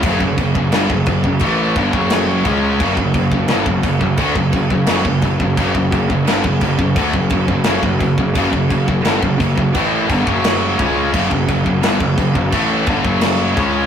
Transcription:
<<
  \new Staff \with { instrumentName = "Distorted electric guitar" } { \clef bass \time 4/4 \key fis \minor \tempo 4 = 86 <fis, cis>16 <fis, cis>16 <fis, cis>16 <fis, cis>16 <g, d>16 <fis, cis>16 <fis, cis>16 <fis, cis>16 <a, e a>8 <g, d>16 <fis, cis fis>8. <cis gis cis'>8 | <fis, cis>16 <fis, cis>16 <fis, cis>16 <fis, cis>16 <g, d>16 <fis, cis>16 <fis, cis>16 <fis, cis>16 <d a>16 <fis, cis>16 <fis, cis>16 <fis, cis>16 <fis, cis>16 <fis, cis>16 <fis, cis>16 <fis, cis>16 | <fis, cis>16 <fis, cis>16 <fis, cis>16 <fis, cis>16 <g, d>16 <fis, cis>16 <fis, cis>16 <fis, cis>16 <d a>16 <fis, cis>16 <fis, cis>16 <fis, cis>16 <fis, cis>16 <fis, cis>16 <fis, cis>16 <fis, cis>16 | <fis, cis>16 <fis, cis>16 <fis, cis>16 <fis, cis>16 <g, d>16 <fis, cis>16 <fis, cis>16 <fis, cis>16 <a, e a>8 <g, d>16 <fis, cis fis>8. <cis gis cis'>8 |
<fis, cis>16 <fis, cis>16 <fis, cis>16 <fis, cis>16 <g, d>16 <fis, cis>16 <fis, cis>16 <fis, cis>16 <a, e a>8 <g, d>16 <fis, cis fis>8. <cis gis cis'>8 | }
  \new Staff \with { instrumentName = "Distorted electric guitar" } { \clef bass \time 4/4 \key fis \minor <fis, cis>16 <fis, cis>16 <fis, cis>16 <fis, cis>16 <g, d>16 <fis, cis>16 <fis, cis>16 <fis, cis>16 <a, e a>8 <g, d>16 <fis, cis fis>8. <cis gis cis'>8 | <fis, cis>16 <fis, cis>16 <fis, cis>16 <fis, cis>16 <g, d>16 <fis, cis>16 <fis, cis>16 <fis, cis>16 <d a>16 <fis, cis>16 <fis, cis>16 <fis, cis>16 <fis, cis>16 <fis, cis>16 <fis, cis>16 <fis, cis>16 | <fis, cis>16 <fis, cis>16 <fis, cis>16 <fis, cis>16 <g, d>16 <fis, cis>16 <fis, cis>16 <fis, cis>16 <d a>16 <fis, cis>16 <fis, cis>16 <fis, cis>16 <fis, cis>16 <fis, cis>16 <fis, cis>16 <fis, cis>16 | <fis, cis>16 <fis, cis>16 <fis, cis>16 <fis, cis>16 <g, d>16 <fis, cis>16 <fis, cis>16 <fis, cis>16 <a, e a>8 <g, d>16 <fis, cis fis>8. <cis gis cis'>8 |
<fis, cis>16 <fis, cis>16 <fis, cis>16 <fis, cis>16 <g, d>16 <fis, cis>16 <fis, cis>16 <fis, cis>16 <a, e a>8 <g, d>16 <fis, cis fis>8. <cis gis cis'>8 | }
  \new Staff \with { instrumentName = "Picked electric bass" } { \clef bass \time 4/4 \key fis \minor fis,,16 fis,,16 fis,,16 fis,,16 g,,16 fis,,16 fis,,16 fis,,16 a,,8 g,,16 fis,,8. cis,8 | fis,,16 fis,,16 fis,,16 fis,,16 g,,16 fis,,16 fis,,16 fis,,16 d,16 fis,,16 fis,,16 fis,,16 fis,,16 fis,,16 fis,,16 fis,,16 | fis,,16 fis,,16 fis,,16 fis,,16 g,,16 fis,,16 fis,,16 fis,,16 d,16 fis,,16 fis,,16 fis,,16 fis,,16 fis,,16 fis,,16 fis,,16 | fis,,16 fis,,16 fis,,16 fis,,16 g,,16 fis,,16 fis,,16 fis,,16 a,,8 g,,16 fis,,8. cis,8 |
fis,,16 fis,,16 fis,,16 fis,,16 g,,16 fis,,16 fis,,16 fis,,16 a,,8 g,,16 fis,,8. cis,8 | }
  \new DrumStaff \with { instrumentName = "Drums" } \drummode { \time 4/4 <cymc bd>16 bd16 <cymc bd>16 bd16 <cymc sn>16 bd16 <cymc bd>16 bd16 <cymc bd>8 <cymc bd>16 bd16 <cymc sn>8 <cymc bd>8 | <cymc bd>16 bd16 <cymc bd>16 bd16 <cymc sn>16 bd16 <cymc bd>16 bd16 <cymc bd>16 bd16 <cymc bd>16 bd16 <cymc sn>16 bd16 <cymc bd>16 bd16 | <cymc bd>16 bd16 <cymc bd>16 bd16 <cymc sn>16 bd16 <cymc bd>16 bd16 <cymc bd>16 bd16 <cymc bd>16 bd16 <cymc sn>16 bd16 <cymc bd>16 bd16 | <cymc bd>16 bd16 <cymc bd>16 bd16 <cymc sn>16 bd16 <cymc bd>16 bd16 <cymc bd>8 <cymc bd>16 bd16 <cymc sn>8 <cymc bd>8 |
<cymc bd>16 bd16 <cymc bd>16 bd16 <cymc sn>16 bd16 <cymc bd>16 bd16 <cymc bd>8 <cymc bd>16 bd16 <cymc sn>8 <cymc bd>8 | }
>>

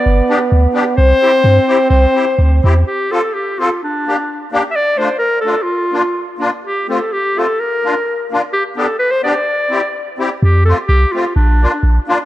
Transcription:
<<
  \new Staff \with { instrumentName = "Clarinet" } { \time 2/4 \key c \major \tempo 4 = 128 d''4~ d''16. r8 r32 | c''2 | c''4. r8 | \key f \major g'8 a'8 g'8 f'8 |
d'4. r16. e''32 | d''8 c''8 bes'8 a'8 | f'4. r8 | g'8 a'8 g'8 a'8 |
bes'4. r8 | g'8 a'8 b'16 c''16 d''8~ | d''4. r8 | g'8 a'8 g'8 f'8 |
d'4. r8 | }
  \new Staff \with { instrumentName = "Accordion" } { \time 2/4 \key c \major r8 <b d' g'>8 r8 <b d' g'>8 | r8 <c' e' g'>8 r8 <c' e' g'>8 | r8 <c' e' g'>8 r8 <c' e' g'>8 | \key f \major r8 <c' f' a'>8 r8 <c' f' a'>8 |
r8 <bes d' g'>8 r8 <bes d' g'>8 | r8 <a d' f'>8 r8 <a d' f'>8 | r8 <bes d' f'>8 r8 <bes d' f'>8 | r8 <a c' f'>8 r8 <a c' f'>8 |
r8 <bes d' f'>8 r8 <bes d' f'>8 | r8 <b d' g'>8 r8 <b d' g'>8 | r8 <c' e' g'>8 r8 <c' e' g'>8 | r8 <a c' f'>8 r8 <a c' f'>8 |
r8 <bes d' f'>8 r8 <bes d' f'>8 | }
  \new Staff \with { instrumentName = "Euphonium" } { \time 2/4 \key c \major b2 | c'2~ | c'4 c'4 | \key f \major r2 |
r2 | r2 | r2 | r2 |
r2 | r2 | r2 | r2 |
r2 | }
  \new Staff \with { instrumentName = "Sub bass" } { \clef bass \time 2/4 \key c \major g,,8 r8 d,8 r8 | c,8 r8 g,8 r8 | c,8 r8 d,8 e,8 | \key f \major r2 |
r2 | r2 | r2 | r2 |
r2 | r2 | r2 | f,4 c,8 r8 |
bes,,4 bes,,8 r8 | }
>>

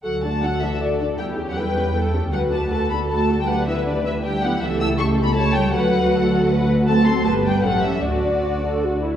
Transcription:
<<
  \new Staff \with { instrumentName = "Violin section" } { \time 3/4 \key d \major \tempo 4 = 157 fis''8 a''8 fis''8 e''8 d''8 d''8 | g''8. fis''16 g''4. r8 | fis''8 a''8 a''8 b''8 a''8. g''16 | fis''8 e''8 d''8 e''8 g''8 fis''8 |
e''8 e'''8 \tuplet 3/2 { cis'''4 b''8 } a''8 g''8 | fis''2~ fis''8 r8 | a''8 c'''8 a''8 g''8 fis''8 e''8 | d''2~ d''8 r8 | }
  \new Staff \with { instrumentName = "Violin section" } { \time 3/4 \key d \major r4 a'2 | g'4 b'4 a'4 | b'4 a'2 | b'2 g'4 |
a'2 cis''4 | b'4 a'4 b'4 | a'4 b'4 a'4 | fis'2~ fis'8 r8 | }
  \new Staff \with { instrumentName = "Viola section" } { \time 3/4 \key d \major <fis' a'>8 <d' fis'>8 <fis' a'>8 <d' fis'>8 <fis' a'>8 <d' fis'>8 | <e' a'>8 <cis' g'>8 <e' a'>8 <cis' g'>8 <e' a'>8 <cis' g'>8 | <fis' a'>8 <d' fis'>8 <fis' a'>8 <d' fis'>8 <fis' a'>8 <d' fis'>8 | <d' g'>8 <b e'>8 <d' g'>8 <b e'>8 <d' g'>8 <b e'>8 |
<a g'>4 <a g'>4 <a g'>4 | <a fis'>2. | <c' fis'>4 <b g'>4 <cis' g'>4 | <d' fis'>4 fis'8 a'8 fis'8 e'8 | }
  \new Staff \with { instrumentName = "Cello section" } { \clef bass \time 3/4 \key d \major fis8 a8 fis8 e8 d8 d8 | g8. fis16 g4. r8 | fis8 a8 a8 b8 a8. g16 | fis8 e8 d8 e8 g8 fis8 |
e8 e'8 \tuplet 3/2 { cis'4 b8 } a8 g8 | fis2~ fis8 r8 | a8 c'8 a8 g8 fis8 e8 | d2~ d8 r8 | }
  \new Staff \with { instrumentName = "Double bass section" } { \clef bass \time 3/4 \key d \major d,2. | e,2. | d,2.~ | d,2. |
cis,2. | d,2.~ | d,4 g,,4 a,,4 | d,2~ d,8 r8 | }
>>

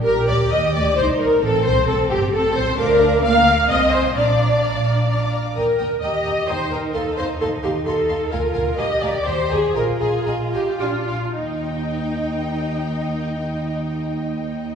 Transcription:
<<
  \new Staff \with { instrumentName = "Violin section" } { \time 3/4 \key ees \major \tempo 4 = 129 bes'8 d''8 ees''8 d''8 c''8 bes'8 | a'8 c''8 a'8 g'8 a'8 c''8 | d'''16 bes''16 d'''16 bes''16 d'''16 bes''16 d'''16 bes''16 ees'''16 c'''16 ees'''16 c'''16 | f'''16 d'''16 f'''16 d'''16 f'''16 d'''16 f'''16 d'''16 f'''16 d'''16 f'''16 d'''16 |
ees'''8 ees'''8 ees'''8 ees'''8 ees'''8 ees'''8 | c'''8 c'''8 c'''8 c'''8 c'''8 c'''8 | bes''8 bes''8 bes''8 bes''8 bes''8 bes''8 | bes''8 bes''8 bes''8 bes''8 d'''8 d'''8 |
g''2.~ | g''2. | }
  \new Staff \with { instrumentName = "Violin section" } { \time 3/4 \key ees \major bes'8 d''8 ees''8 d''8 c''8 bes'8 | a'8 c''8 a'8 g'8 a'8 c''8 | <d'' f''>16 <d'' f''>16 <d'' f''>16 <d'' f''>16 <d'' f''>16 <d'' f''>16 <d'' f''>16 <d'' f''>16 <c'' aes''>16 <ees'' c'''>16 <c'' aes''>16 <ees'' c'''>16 | <d'' bes''>16 <f'' d'''>16 <d'' bes''>16 <f'' d'''>16 <d'' bes''>16 <f'' d'''>16 <d'' bes''>16 <f'' d'''>16 <d'' bes''>16 <f'' d'''>16 <d'' bes''>16 <f'' d'''>16 |
<g'' bes''>8 <g'' bes''>8 <g'' bes''>8 <g'' bes''>8 <g'' bes''>8 <g'' bes''>8 | <f'' c'''>8 <f'' c'''>8 <f'' c'''>8 <f'' c'''>8 <f'' c'''>8 <f'' c'''>8 | <f'' aes''>8 <f'' aes''>8 <f'' aes''>8 <f'' aes''>8 <ees'' g''>8 <ees'' g''>8 | <ees'' aes''>8 <ees'' aes''>8 <ees'' aes''>8 <ees'' aes''>8 <f'' aes''>8 <f'' aes''>8 |
<ees'' g''>2.~ | <ees'' g''>2. | }
  \new Staff \with { instrumentName = "Viola section" } { \time 3/4 \key ees \major bes'8 d''8 ees''8 d''8 c''8 bes'8 | a'8 c''8 a'8 g'8 a'8 c''8 | bes'4 f''4 ees''8 c''8 | d''2~ d''8 r8 |
bes'4 ees''4 c''8 bes'8 | a'8 c''8 a'8 g'8 a'4 | bes'4 ees''8 d''8 c''8 aes'8 | bes'8 aes'8 aes'8 g'8 f'4 |
ees'2.~ | ees'2. | }
  \new Staff \with { instrumentName = "Cello section" } { \time 3/4 \key ees \major g'2 ees'4 | c'2. | d'4 bes4 c'4 | d'2~ d'8 r8 |
r4 g'4 ees'4~ | ees'2. | f'4 g'2 | f'2 d'8 r8 |
ees,2.~ | ees,2. | }
  \new Staff \with { instrumentName = "Double bass section" } { \clef bass \time 3/4 \key ees \major bes,,8 d,8 ees,8 d,8 c,8 bes,,8 | a,,8 c,8 a,,8 g,,8 a,,8 c,8 | d,4 d,4 c,4 | bes,,4 bes,,4 bes,,4 |
ees,8 ees,8 ees,8 ees,8 ees,8 ees,8 | ees,8 ees,8 ees,8 ees,8 ees,8 ees,8 | d,8 d,8 d,8 d,8 ees,8 ees,8 | bes,,8 bes,,8 bes,,8 bes,,8 bes,,8 bes,,8 |
ees,2.~ | ees,2. | }
>>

